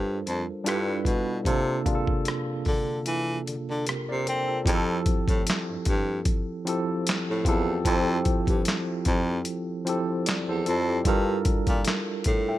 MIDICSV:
0, 0, Header, 1, 4, 480
1, 0, Start_track
1, 0, Key_signature, -1, "major"
1, 0, Tempo, 800000
1, 873, Time_signature, 4, 2, 24, 8
1, 7551, End_track
2, 0, Start_track
2, 0, Title_t, "Tine electric piano"
2, 0, Program_c, 0, 4
2, 0, Control_c, 0, 64, 127
2, 0, Note_on_c, 0, 55, 83
2, 0, Note_on_c, 0, 62, 71
2, 0, Note_on_c, 0, 65, 72
2, 0, Note_on_c, 0, 69, 71
2, 0, Note_on_c, 0, 70, 77
2, 0, Note_on_c, 0, 72, 88
2, 384, Note_off_c, 0, 55, 0
2, 384, Note_on_c, 0, 55, 83
2, 388, Note_off_c, 0, 62, 0
2, 388, Note_on_c, 0, 62, 75
2, 394, Note_on_c, 0, 64, 77
2, 399, Note_off_c, 0, 65, 0
2, 399, Note_on_c, 0, 65, 72
2, 401, Control_c, 0, 64, 0
2, 402, Note_off_c, 0, 69, 0
2, 402, Note_on_c, 0, 69, 73
2, 405, Note_off_c, 0, 72, 0
2, 406, Note_off_c, 0, 70, 0
2, 407, Note_on_c, 0, 71, 86
2, 520, Control_c, 0, 64, 127
2, 784, Note_off_c, 0, 55, 0
2, 786, Note_off_c, 0, 62, 0
2, 788, Note_off_c, 0, 64, 0
2, 791, Note_off_c, 0, 65, 0
2, 793, Note_off_c, 0, 69, 0
2, 795, Note_off_c, 0, 71, 0
2, 865, Note_on_c, 0, 48, 77
2, 872, Note_on_c, 0, 58, 73
2, 878, Note_on_c, 0, 62, 69
2, 882, Control_c, 0, 64, 0
2, 882, Note_on_c, 0, 65, 72
2, 889, Note_on_c, 0, 69, 83
2, 984, Control_c, 0, 64, 127
2, 1067, Note_off_c, 0, 48, 0
2, 1070, Note_off_c, 0, 58, 0
2, 1073, Note_off_c, 0, 62, 0
2, 1075, Note_off_c, 0, 65, 0
2, 1079, Note_off_c, 0, 69, 0
2, 1108, Note_on_c, 0, 48, 75
2, 1114, Note_on_c, 0, 58, 71
2, 1120, Note_on_c, 0, 62, 70
2, 1127, Note_on_c, 0, 65, 71
2, 1131, Note_on_c, 0, 68, 70
2, 1165, Note_off_c, 0, 68, 0
2, 1168, Note_on_c, 0, 69, 84
2, 1885, Note_off_c, 0, 48, 0
2, 1888, Note_off_c, 0, 58, 0
2, 1892, Note_off_c, 0, 62, 0
2, 1895, Note_off_c, 0, 65, 0
2, 1916, Note_off_c, 0, 69, 0
2, 2320, Note_on_c, 0, 70, 55
2, 2323, Note_on_c, 0, 67, 47
2, 2443, Note_off_c, 0, 70, 0
2, 2445, Note_off_c, 0, 67, 0
2, 2453, Note_on_c, 0, 74, 62
2, 2457, Note_on_c, 0, 70, 53
2, 2552, Note_off_c, 0, 74, 0
2, 2553, Note_off_c, 0, 70, 0
2, 2560, Note_on_c, 0, 72, 57
2, 2565, Note_on_c, 0, 69, 48
2, 2680, Note_off_c, 0, 69, 0
2, 2683, Note_off_c, 0, 72, 0
2, 2687, Note_on_c, 0, 69, 51
2, 2694, Note_on_c, 0, 65, 46
2, 2786, Note_on_c, 0, 53, 84
2, 2792, Note_on_c, 0, 60, 78
2, 2797, Note_on_c, 0, 64, 72
2, 2802, Control_c, 0, 64, 0
2, 2802, Note_on_c, 0, 67, 73
2, 2809, Note_on_c, 0, 68, 71
2, 2841, Note_off_c, 0, 69, 0
2, 2844, Note_off_c, 0, 68, 0
2, 2848, Note_on_c, 0, 69, 89
2, 2910, Control_c, 0, 64, 127
2, 2918, Note_off_c, 0, 65, 0
2, 3564, Note_off_c, 0, 53, 0
2, 3567, Note_off_c, 0, 60, 0
2, 3570, Note_off_c, 0, 64, 0
2, 3573, Note_off_c, 0, 67, 0
2, 3596, Note_off_c, 0, 69, 0
2, 3989, Note_on_c, 0, 53, 78
2, 3995, Note_on_c, 0, 60, 70
2, 3999, Note_on_c, 0, 64, 74
2, 4005, Note_on_c, 0, 67, 68
2, 4014, Note_on_c, 0, 69, 81
2, 4386, Note_off_c, 0, 53, 0
2, 4389, Note_off_c, 0, 60, 0
2, 4391, Note_off_c, 0, 64, 0
2, 4394, Note_off_c, 0, 67, 0
2, 4398, Note_off_c, 0, 69, 0
2, 4470, Note_on_c, 0, 65, 77
2, 4474, Note_on_c, 0, 60, 72
2, 4482, Note_on_c, 0, 64, 68
2, 4487, Note_on_c, 0, 67, 70
2, 4493, Note_on_c, 0, 69, 86
2, 4669, Note_off_c, 0, 65, 0
2, 4671, Note_off_c, 0, 60, 0
2, 4675, Note_off_c, 0, 64, 0
2, 4678, Note_off_c, 0, 67, 0
2, 4681, Note_off_c, 0, 69, 0
2, 4708, Note_on_c, 0, 53, 86
2, 4715, Note_on_c, 0, 60, 79
2, 4720, Note_on_c, 0, 64, 75
2, 4726, Note_on_c, 0, 67, 76
2, 4732, Note_on_c, 0, 69, 92
2, 5486, Note_off_c, 0, 53, 0
2, 5489, Note_off_c, 0, 60, 0
2, 5491, Note_off_c, 0, 64, 0
2, 5494, Note_off_c, 0, 67, 0
2, 5498, Note_off_c, 0, 69, 0
2, 5910, Note_on_c, 0, 53, 75
2, 5916, Note_on_c, 0, 60, 71
2, 5922, Note_on_c, 0, 64, 73
2, 5929, Note_on_c, 0, 67, 72
2, 5935, Note_on_c, 0, 69, 84
2, 6158, Note_off_c, 0, 64, 0
2, 6161, Note_off_c, 0, 67, 0
2, 6162, Note_on_c, 0, 74, 65
2, 6164, Note_off_c, 0, 69, 0
2, 6284, Note_off_c, 0, 74, 0
2, 6292, Note_on_c, 0, 72, 73
2, 6295, Note_on_c, 0, 69, 65
2, 6307, Note_off_c, 0, 53, 0
2, 6310, Note_off_c, 0, 60, 0
2, 6389, Note_off_c, 0, 69, 0
2, 6391, Note_off_c, 0, 72, 0
2, 6397, Note_on_c, 0, 69, 69
2, 6398, Note_on_c, 0, 65, 57
2, 6521, Note_off_c, 0, 69, 0
2, 6522, Note_off_c, 0, 65, 0
2, 6532, Note_on_c, 0, 67, 59
2, 6536, Note_on_c, 0, 64, 52
2, 6625, Note_on_c, 0, 55, 87
2, 6632, Note_on_c, 0, 62, 73
2, 6637, Note_on_c, 0, 65, 73
2, 6642, Control_c, 0, 64, 0
2, 6645, Note_on_c, 0, 69, 77
2, 6649, Note_on_c, 0, 70, 96
2, 6757, Note_off_c, 0, 67, 0
2, 6759, Note_off_c, 0, 64, 0
2, 6763, Control_c, 0, 64, 127
2, 7359, Note_off_c, 0, 69, 0
2, 7361, Note_off_c, 0, 70, 0
2, 7404, Note_off_c, 0, 55, 0
2, 7408, Note_off_c, 0, 62, 0
2, 7410, Note_off_c, 0, 65, 0
2, 7492, Note_on_c, 0, 79, 67
2, 7495, Note_on_c, 0, 76, 56
2, 7551, Note_off_c, 0, 76, 0
2, 7551, Note_off_c, 0, 79, 0
2, 7551, End_track
3, 0, Start_track
3, 0, Title_t, "Baritone saxophone"
3, 0, Program_c, 1, 67
3, 0, Note_on_c, 1, 43, 83
3, 114, Note_off_c, 1, 43, 0
3, 162, Note_on_c, 1, 41, 84
3, 268, Note_off_c, 1, 41, 0
3, 401, Note_on_c, 1, 43, 101
3, 597, Note_off_c, 1, 43, 0
3, 634, Note_on_c, 1, 47, 82
3, 833, Note_off_c, 1, 47, 0
3, 876, Note_on_c, 1, 48, 94
3, 1074, Note_off_c, 1, 48, 0
3, 1603, Note_on_c, 1, 50, 75
3, 1798, Note_off_c, 1, 50, 0
3, 1841, Note_on_c, 1, 52, 83
3, 2037, Note_off_c, 1, 52, 0
3, 2085, Note_on_c, 1, 50, 42
3, 2135, Note_off_c, 1, 50, 0
3, 2216, Note_on_c, 1, 50, 77
3, 2301, Note_off_c, 1, 50, 0
3, 2327, Note_on_c, 1, 48, 45
3, 2377, Note_off_c, 1, 48, 0
3, 2461, Note_on_c, 1, 48, 74
3, 2544, Note_off_c, 1, 48, 0
3, 2568, Note_on_c, 1, 60, 79
3, 2761, Note_off_c, 1, 60, 0
3, 2799, Note_on_c, 1, 41, 112
3, 2996, Note_off_c, 1, 41, 0
3, 3170, Note_on_c, 1, 45, 87
3, 3258, Note_off_c, 1, 45, 0
3, 3422, Note_on_c, 1, 43, 48
3, 3461, Note_off_c, 1, 43, 0
3, 3523, Note_on_c, 1, 43, 93
3, 3718, Note_off_c, 1, 43, 0
3, 4378, Note_on_c, 1, 45, 93
3, 4462, Note_off_c, 1, 45, 0
3, 4474, Note_on_c, 1, 40, 93
3, 4673, Note_off_c, 1, 40, 0
3, 4715, Note_on_c, 1, 41, 114
3, 4913, Note_off_c, 1, 41, 0
3, 5088, Note_on_c, 1, 43, 78
3, 5176, Note_off_c, 1, 43, 0
3, 5440, Note_on_c, 1, 41, 93
3, 5636, Note_off_c, 1, 41, 0
3, 6294, Note_on_c, 1, 40, 88
3, 6379, Note_off_c, 1, 40, 0
3, 6402, Note_on_c, 1, 41, 95
3, 6597, Note_off_c, 1, 41, 0
3, 6634, Note_on_c, 1, 43, 107
3, 6833, Note_off_c, 1, 43, 0
3, 7007, Note_on_c, 1, 46, 85
3, 7096, Note_off_c, 1, 46, 0
3, 7360, Note_on_c, 1, 45, 86
3, 7551, Note_off_c, 1, 45, 0
3, 7551, End_track
4, 0, Start_track
4, 0, Title_t, "Drums"
4, 161, Note_on_c, 9, 42, 57
4, 221, Note_off_c, 9, 42, 0
4, 398, Note_on_c, 9, 42, 80
4, 412, Note_on_c, 9, 37, 108
4, 458, Note_off_c, 9, 42, 0
4, 472, Note_off_c, 9, 37, 0
4, 630, Note_on_c, 9, 36, 80
4, 638, Note_on_c, 9, 42, 57
4, 690, Note_off_c, 9, 36, 0
4, 698, Note_off_c, 9, 42, 0
4, 872, Note_on_c, 9, 36, 89
4, 877, Note_on_c, 9, 42, 69
4, 932, Note_off_c, 9, 36, 0
4, 937, Note_off_c, 9, 42, 0
4, 1115, Note_on_c, 9, 36, 84
4, 1117, Note_on_c, 9, 42, 46
4, 1175, Note_off_c, 9, 36, 0
4, 1177, Note_off_c, 9, 42, 0
4, 1245, Note_on_c, 9, 36, 81
4, 1305, Note_off_c, 9, 36, 0
4, 1352, Note_on_c, 9, 42, 74
4, 1370, Note_on_c, 9, 37, 102
4, 1412, Note_off_c, 9, 42, 0
4, 1430, Note_off_c, 9, 37, 0
4, 1591, Note_on_c, 9, 46, 40
4, 1597, Note_on_c, 9, 36, 79
4, 1651, Note_off_c, 9, 46, 0
4, 1657, Note_off_c, 9, 36, 0
4, 1834, Note_on_c, 9, 42, 60
4, 1894, Note_off_c, 9, 42, 0
4, 2085, Note_on_c, 9, 42, 55
4, 2145, Note_off_c, 9, 42, 0
4, 2319, Note_on_c, 9, 42, 78
4, 2334, Note_on_c, 9, 37, 102
4, 2379, Note_off_c, 9, 42, 0
4, 2394, Note_off_c, 9, 37, 0
4, 2562, Note_on_c, 9, 42, 57
4, 2622, Note_off_c, 9, 42, 0
4, 2794, Note_on_c, 9, 36, 107
4, 2802, Note_on_c, 9, 42, 87
4, 2854, Note_off_c, 9, 36, 0
4, 2862, Note_off_c, 9, 42, 0
4, 3035, Note_on_c, 9, 42, 56
4, 3036, Note_on_c, 9, 36, 100
4, 3095, Note_off_c, 9, 42, 0
4, 3096, Note_off_c, 9, 36, 0
4, 3166, Note_on_c, 9, 36, 94
4, 3171, Note_on_c, 9, 42, 43
4, 3226, Note_off_c, 9, 36, 0
4, 3231, Note_off_c, 9, 42, 0
4, 3280, Note_on_c, 9, 42, 83
4, 3298, Note_on_c, 9, 38, 115
4, 3305, Note_on_c, 9, 39, 85
4, 3340, Note_off_c, 9, 42, 0
4, 3358, Note_off_c, 9, 38, 0
4, 3365, Note_off_c, 9, 39, 0
4, 3512, Note_on_c, 9, 42, 62
4, 3518, Note_on_c, 9, 36, 84
4, 3572, Note_off_c, 9, 42, 0
4, 3578, Note_off_c, 9, 36, 0
4, 3752, Note_on_c, 9, 42, 68
4, 3753, Note_on_c, 9, 36, 94
4, 3812, Note_off_c, 9, 42, 0
4, 3813, Note_off_c, 9, 36, 0
4, 4002, Note_on_c, 9, 42, 66
4, 4062, Note_off_c, 9, 42, 0
4, 4240, Note_on_c, 9, 42, 90
4, 4255, Note_on_c, 9, 38, 124
4, 4262, Note_on_c, 9, 39, 96
4, 4300, Note_off_c, 9, 42, 0
4, 4315, Note_off_c, 9, 38, 0
4, 4322, Note_off_c, 9, 39, 0
4, 4470, Note_on_c, 9, 36, 94
4, 4475, Note_on_c, 9, 42, 61
4, 4530, Note_off_c, 9, 36, 0
4, 4535, Note_off_c, 9, 42, 0
4, 4710, Note_on_c, 9, 36, 105
4, 4713, Note_on_c, 9, 42, 82
4, 4770, Note_off_c, 9, 36, 0
4, 4773, Note_off_c, 9, 42, 0
4, 4951, Note_on_c, 9, 42, 53
4, 4954, Note_on_c, 9, 36, 96
4, 5011, Note_off_c, 9, 42, 0
4, 5014, Note_off_c, 9, 36, 0
4, 5083, Note_on_c, 9, 36, 97
4, 5086, Note_on_c, 9, 42, 43
4, 5143, Note_off_c, 9, 36, 0
4, 5146, Note_off_c, 9, 42, 0
4, 5191, Note_on_c, 9, 42, 82
4, 5209, Note_on_c, 9, 38, 115
4, 5216, Note_on_c, 9, 39, 86
4, 5251, Note_off_c, 9, 42, 0
4, 5269, Note_off_c, 9, 38, 0
4, 5276, Note_off_c, 9, 39, 0
4, 5431, Note_on_c, 9, 42, 66
4, 5436, Note_on_c, 9, 36, 81
4, 5491, Note_off_c, 9, 42, 0
4, 5496, Note_off_c, 9, 36, 0
4, 5670, Note_on_c, 9, 42, 67
4, 5730, Note_off_c, 9, 42, 0
4, 5921, Note_on_c, 9, 42, 62
4, 5981, Note_off_c, 9, 42, 0
4, 6157, Note_on_c, 9, 42, 87
4, 6172, Note_on_c, 9, 38, 125
4, 6179, Note_on_c, 9, 39, 99
4, 6217, Note_off_c, 9, 42, 0
4, 6232, Note_off_c, 9, 38, 0
4, 6239, Note_off_c, 9, 39, 0
4, 6397, Note_on_c, 9, 42, 62
4, 6457, Note_off_c, 9, 42, 0
4, 6631, Note_on_c, 9, 36, 109
4, 6631, Note_on_c, 9, 42, 83
4, 6691, Note_off_c, 9, 36, 0
4, 6691, Note_off_c, 9, 42, 0
4, 6870, Note_on_c, 9, 42, 57
4, 6872, Note_on_c, 9, 36, 101
4, 6930, Note_off_c, 9, 42, 0
4, 6932, Note_off_c, 9, 36, 0
4, 7000, Note_on_c, 9, 42, 44
4, 7002, Note_on_c, 9, 36, 91
4, 7060, Note_off_c, 9, 42, 0
4, 7062, Note_off_c, 9, 36, 0
4, 7107, Note_on_c, 9, 42, 86
4, 7125, Note_on_c, 9, 38, 116
4, 7132, Note_on_c, 9, 39, 86
4, 7167, Note_off_c, 9, 42, 0
4, 7185, Note_off_c, 9, 38, 0
4, 7192, Note_off_c, 9, 39, 0
4, 7346, Note_on_c, 9, 42, 68
4, 7355, Note_on_c, 9, 36, 79
4, 7406, Note_off_c, 9, 42, 0
4, 7415, Note_off_c, 9, 36, 0
4, 7551, End_track
0, 0, End_of_file